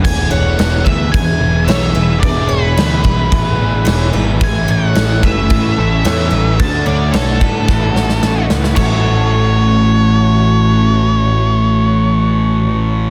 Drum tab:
CC |x---x---x---x---|x---x---x---x---|x---x---x---x---|x---x-----------|
SD |----o-------o---|----o-------o---|----o-------o---|----o---o-ooo-oo|
BD |o-----o-o-------|o-----o-o-------|o-----o-o-------|o-----o-o-------|

CC |x---------------|----------------|
SD |----------------|----------------|
BD |o---------------|----------------|